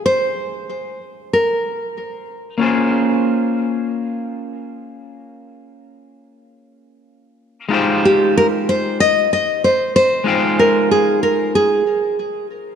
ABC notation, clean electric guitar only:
X:1
M:4/4
L:1/8
Q:"Swing 16ths" 1/4=94
K:Fm
V:1 name="Clean electric guitar"
[A,EFcg]8 | [B,DFAc]8- | [B,DFAc]8 | [A,EFGc]4- [A,EFGc] z3 |
[A,EFcg]4- [A,EFcg] z3 |]